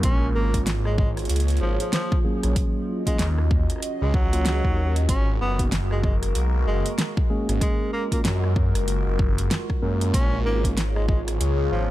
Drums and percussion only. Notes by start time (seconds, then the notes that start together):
0.03 kick, closed hi-hat
0.54 kick, closed hi-hat
0.67 snare, closed hi-hat
0.85 cross-stick
0.98 kick
1.17 cross-stick, closed hi-hat
1.19 closed hi-hat
1.25 closed hi-hat
1.29 closed hi-hat
1.36 closed hi-hat
1.40 closed hi-hat
1.48 closed hi-hat
1.50 closed hi-hat
1.57 closed hi-hat
1.80 closed hi-hat
1.93 snare, closed hi-hat
2.12 kick
2.43 cross-stick, closed hi-hat
2.56 kick, closed hi-hat
3.07 kick, closed hi-hat
3.19 snare, closed hi-hat
3.38 cross-stick
3.51 kick
3.70 cross-stick, closed hi-hat
3.72 cross-stick
3.76 cross-stick
3.78 cross-stick
3.80 cross-stick, closed hi-hat
4.14 kick
4.33 closed hi-hat
4.46 snare, closed hi-hat
4.65 kick, cross-stick
4.96 closed hi-hat
5.09 kick, closed hi-hat
5.59 kick, closed hi-hat
5.72 snare, closed hi-hat
5.91 cross-stick
6.04 kick
6.23 cross-stick, closed hi-hat
6.35 closed hi-hat
6.86 closed hi-hat
6.99 snare, closed hi-hat
7.17 kick
7.49 cross-stick, closed hi-hat
7.61 kick, closed hi-hat
8.12 kick, closed hi-hat
8.25 snare, closed hi-hat
8.44 cross-stick
8.56 kick
8.75 cross-stick, closed hi-hat
8.88 closed hi-hat
9.19 kick
9.38 closed hi-hat
9.51 snare, closed hi-hat
9.70 kick, cross-stick
10.01 closed hi-hat
10.14 kick, closed hi-hat
10.64 kick, closed hi-hat
10.77 snare, closed hi-hat
10.96 cross-stick
11.09 kick
11.28 cross-stick, closed hi-hat
11.41 closed hi-hat